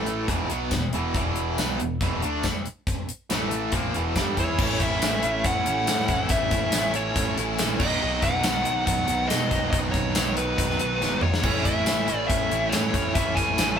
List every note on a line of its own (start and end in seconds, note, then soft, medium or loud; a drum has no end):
0.00 0.25 A1 medium
0.00 0.28 A2 medium
0.00 0.28 E3 medium
0.00 0.28 A3 medium
0.06 closed hi-hat medium
0.28 0.48 E1 medium
0.28 0.49 E2 medium
0.28 0.49 B2 loud
0.28 0.50 E3 loud
0.28 kick medium
0.28 closed hi-hat medium
0.50 0.70 B1 medium
0.50 0.71 B2 medium
0.50 0.71 F#3 medium
0.50 0.71 B3 medium
0.50 closed hi-hat medium
0.71 0.92 E1 medium
0.71 0.89 E2 soft
0.71 0.90 B2 medium
0.71 kick medium
0.71 snare medium
0.71 closed hi-hat medium
0.71 tambourine loud
0.93 1.14 E1 medium
0.93 1.15 E2 medium
0.93 1.15 B2 medium
0.93 1.15 E3 medium
0.93 closed hi-hat medium
1.14 1.55 E1 medium
1.14 1.58 E2 medium
1.14 1.57 B2 medium
1.14 1.58 E3 loud
1.14 kick loud
1.14 closed hi-hat medium
1.36 closed hi-hat medium
1.58 1.78 B1 medium
1.58 1.79 B2 medium
1.58 1.79 F#3 medium
1.58 1.79 B3 loud
1.58 snare loud
1.58 closed hi-hat medium
1.58 tambourine loud
1.79 2.00 E1 medium
1.79 1.98 E2 medium
1.79 1.98 B2 medium
1.79 closed hi-hat medium
2.01 2.21 E1 medium
2.01 2.22 E2 loud
2.01 2.22 B2 medium
2.01 2.23 E3 loud
2.01 kick medium
2.01 closed hi-hat medium
2.22 2.43 D2 medium
2.22 2.44 D3 medium
2.22 2.44 A3 medium
2.22 2.44 D4 medium
2.22 closed hi-hat soft
2.43 kick medium
2.43 snare medium
2.43 closed hi-hat medium
2.43 tambourine medium
2.65 closed hi-hat medium
2.87 kick loud
2.87 closed hi-hat medium
3.09 closed hi-hat medium
3.30 3.70 A1 medium
3.30 3.73 A2 medium
3.30 3.73 E3 medium
3.30 3.74 A3 medium
3.30 snare loud
3.30 closed hi-hat medium
3.30 tambourine loud
3.51 closed hi-hat medium
3.72 3.93 A#1 medium
3.72 3.94 A#2 medium
3.72 3.95 F3 loud
3.72 3.95 A#3 loud
3.72 kick medium
3.72 closed hi-hat medium
3.94 4.15 E1 medium
3.94 4.16 E2 medium
3.94 4.16 B2 medium
3.94 4.16 E3 medium
3.94 closed hi-hat medium
4.16 4.36 G1 medium
4.16 4.38 G2 medium
4.16 4.38 D3 medium
4.16 4.38 G3 medium
4.16 kick medium
4.16 snare loud
4.16 closed hi-hat medium
4.16 tambourine loud
4.37 4.58 E2 medium
4.37 4.59 E3 medium
4.37 4.59 B3 medium
4.37 4.59 E4 loud
4.37 4.83 C#5 medium
4.37 kick medium
4.37 closed hi-hat medium
4.59 4.78 A1 loud
4.59 5.86 A2 medium
4.59 5.01 E3 medium
4.59 4.84 A3 medium
4.59 4.83 C#4 loud
4.59 4.81 E4 loud
4.59 kick loud
4.59 crash loud
4.80 5.00 A1 medium
4.80 5.03 C#4 soft
4.80 5.03 E4 medium
4.80 5.46 E5 medium
4.80 kick medium
4.80 closed hi-hat medium
4.84 5.02 A3 medium
5.01 5.21 A1 medium
5.01 5.86 E3 medium
5.01 5.67 A3 medium
5.01 5.66 C#4 medium
5.01 5.64 E4 medium
5.01 snare loud
5.01 closed hi-hat medium
5.01 tambourine loud
5.23 5.43 A1 medium
5.23 6.30 E3 medium
5.23 6.30 A3 medium
5.23 6.30 C#4 medium
5.23 6.29 E4 medium
5.23 closed hi-hat medium
5.27 6.28 A2 medium
5.44 5.64 A1 medium
5.44 6.30 F#5 loud
5.44 kick medium
5.44 closed hi-hat loud
5.66 5.86 A1 medium
5.66 5.87 A3 medium
5.66 5.87 C#4 medium
5.66 5.87 E4 medium
5.66 closed hi-hat medium
5.86 6.30 A2 medium
5.86 6.08 A2 medium
5.86 6.30 E3 medium
5.86 6.09 A3 medium
5.86 6.08 C#4 medium
5.86 6.07 E4 medium
5.86 snare loud
5.86 closed hi-hat loud
5.86 tambourine loud
5.86 tambourine medium
6.00 snare soft
6.08 6.28 A1 medium
6.08 6.31 A3 medium
6.08 6.31 C#4 medium
6.08 6.32 E4 medium
6.08 kick medium
6.08 closed hi-hat medium
6.29 6.50 A1 loud
6.29 6.74 A2 medium
6.29 6.73 E3 medium
6.29 6.53 A3 loud
6.29 6.52 C#4 loud
6.29 6.51 E4 loud
6.29 6.97 E5 loud
6.29 kick loud
6.29 closed hi-hat loud
6.51 6.71 A1 medium
6.51 6.74 A3 medium
6.51 6.74 C#4 medium
6.51 6.75 E4 medium
6.51 kick medium
6.51 closed hi-hat medium
6.72 snare loud
6.72 closed hi-hat loud
6.72 tambourine loud
6.74 7.12 A1 medium
6.74 7.59 E3 medium
6.74 7.38 A3 medium
6.74 7.38 C#4 loud
6.74 7.36 E4 loud
6.74 tambourine medium
6.94 7.80 A2 medium
6.94 7.80 E3 medium
6.94 7.80 A3 medium
6.94 7.79 C#4 medium
6.94 7.79 E4 medium
6.94 7.35 C#5 medium
6.94 closed hi-hat medium
7.16 7.35 A1 loud
7.16 kick medium
7.16 closed hi-hat loud
7.38 7.57 A1 medium
7.38 7.59 A3 medium
7.38 7.60 C#4 medium
7.38 7.60 E4 medium
7.38 closed hi-hat medium
7.59 7.79 A#1 loud
7.59 7.79 A2 medium
7.59 7.80 E3 medium
7.59 7.80 A3 medium
7.59 7.80 C#4 medium
7.59 7.80 E4 medium
7.59 snare loud
7.59 closed hi-hat loud
7.59 tambourine loud
7.80 7.99 B1 medium
7.80 8.02 B2 medium
7.80 8.01 D#3 medium
7.80 8.03 F#3 medium
7.80 8.04 B3 medium
7.80 8.04 D#4 medium
7.80 8.23 D#5 medium
7.80 kick loud
7.80 crash loud
8.02 8.21 B1 loud
8.02 9.29 B2 medium
8.02 8.44 D#3 loud
8.02 8.25 F#3 loud
8.02 8.24 B3 loud
8.02 8.23 D#4 loud
8.22 8.42 B1 medium
8.22 8.46 F#3 medium
8.22 8.46 B3 medium
8.22 8.47 D#4 medium
8.22 8.85 F#5 medium
8.22 kick medium
8.22 closed hi-hat medium
8.43 8.64 B1 medium
8.43 9.50 B2 medium
8.43 9.29 D#3 medium
8.43 9.09 F#3 medium
8.43 9.09 B3 medium
8.43 9.08 D#4 medium
8.43 snare loud
8.43 closed hi-hat medium
8.43 tambourine loud
8.65 8.85 B1 medium
8.65 closed hi-hat medium
8.86 9.07 B1 medium
8.86 9.28 F#5 medium
8.86 kick medium
8.86 closed hi-hat loud
9.08 9.27 B1 loud
9.08 9.29 F#3 medium
9.08 9.30 B3 medium
9.08 9.31 D#4 medium
9.08 closed hi-hat medium
9.29 9.72 B2 medium
9.29 9.50 B2 medium
9.29 9.72 D#3 medium
9.29 9.52 F#3 loud
9.29 9.51 B3 medium
9.29 9.50 D#4 medium
9.29 9.70 D#5 medium
9.29 snare loud
9.29 closed hi-hat medium
9.29 tambourine loud
9.51 9.71 B1 medium
9.51 10.13 B2 medium
9.51 10.15 D#3 medium
9.51 9.73 F#3 medium
9.51 9.74 B3 medium
9.51 9.74 D#4 medium
9.51 kick medium
9.51 closed hi-hat medium
9.71 9.92 B1 loud
9.71 10.16 B2 medium
9.71 10.16 D#3 loud
9.71 9.95 F#3 loud
9.71 9.77 D#5 loud
9.71 kick loud
9.71 closed hi-hat loud
9.75 9.95 B3 loud
9.75 9.94 D#4 loud
9.92 10.14 B1 medium
9.92 10.18 D#4 medium
9.92 10.33 C#5 medium
9.92 kick medium
9.92 closed hi-hat medium
9.96 10.17 F#3 medium
9.96 10.18 B3 medium
10.14 10.54 B1 medium
10.14 11.21 B2 medium
10.14 11.01 D#3 medium
10.14 10.81 F#3 medium
10.14 snare loud
10.14 closed hi-hat loud
10.14 tambourine loud
10.19 10.79 B3 medium
10.19 10.79 D#4 medium
10.37 11.22 B4 loud
10.37 closed hi-hat medium
10.58 10.78 B1 medium
10.58 kick medium
10.58 closed hi-hat loud
10.70 snare soft
10.79 11.00 B1 medium
10.79 11.01 F#3 medium
10.79 11.02 B3 medium
10.79 11.03 D#4 medium
10.79 closed hi-hat medium
11.02 11.41 G#1 medium
11.02 11.43 B2 medium
11.02 11.44 D#3 medium
11.02 11.23 F#3 medium
11.02 11.23 B3 medium
11.02 11.22 D#4 medium
11.02 snare medium
11.02 tambourine medium
11.21 11.44 F#3 medium
11.21 11.44 B3 medium
11.21 11.43 D#4 medium
11.21 11.63 C#5 medium
11.21 mid tom medium
11.34 snare medium
11.43 11.63 A1 loud
11.43 12.72 A2 medium
11.43 11.86 E3 medium
11.43 11.68 A3 loud
11.43 11.66 C#4 loud
11.43 11.65 E4 loud
11.43 kick loud
11.43 crash medium
11.65 11.85 A1 medium
11.65 11.87 A3 medium
11.65 11.87 C#4 medium
11.65 11.88 E4 medium
11.65 12.16 E5 loud
11.65 kick medium
11.65 closed hi-hat medium
11.86 12.07 A1 medium
11.86 12.72 E3 medium
11.86 12.52 A3 medium
11.86 12.50 C#4 medium
11.86 12.50 E4 medium
11.86 snare loud
11.86 closed hi-hat medium
11.86 tambourine loud
11.86 tambourine medium
12.07 12.29 A1 medium
12.07 13.13 A2 medium
12.07 13.15 E3 medium
12.07 13.15 A3 medium
12.07 13.14 C#4 medium
12.07 13.14 E4 medium
12.07 closed hi-hat medium
12.16 12.27 D5 loud
12.28 12.50 A1 medium
12.28 12.73 E5 loud
12.28 kick loud
12.28 closed hi-hat loud
12.51 12.71 A1 medium
12.51 12.72 A3 medium
12.51 12.73 C#4 medium
12.51 12.73 E4 medium
12.51 closed hi-hat medium
12.69 13.15 A2 medium
12.69 13.15 E3 medium
12.69 13.16 C#5 medium
12.69 snare loud
12.69 closed hi-hat medium
12.69 tambourine loud
12.69 tambourine medium
12.74 12.93 A2 medium
12.74 12.95 A3 medium
12.74 12.94 C#4 medium
12.74 12.93 E4 medium
12.94 13.13 A1 medium
12.94 13.16 A3 medium
12.94 13.16 C#4 medium
12.94 13.17 E4 medium
12.94 kick medium
12.94 closed hi-hat medium
13.14 13.35 A1 loud
13.14 13.59 A2 loud
13.14 13.57 E3 loud
13.14 13.38 A3 loud
13.14 13.37 C#4 medium
13.14 13.36 E4 loud
13.14 13.35 E5 loud
13.14 kick loud
13.14 closed hi-hat loud
13.35 13.56 A1 medium
13.35 13.58 A3 medium
13.35 13.59 C#4 medium
13.35 13.59 E4 medium
13.35 13.77 G#5 medium
13.35 kick medium
13.35 closed hi-hat medium
13.58 13.79 A1 medium
13.58 13.79 E3 medium
13.58 13.79 A3 medium
13.58 13.79 C#4 medium
13.58 13.79 E4 medium
13.58 snare loud
13.58 closed hi-hat loud
13.58 tambourine loud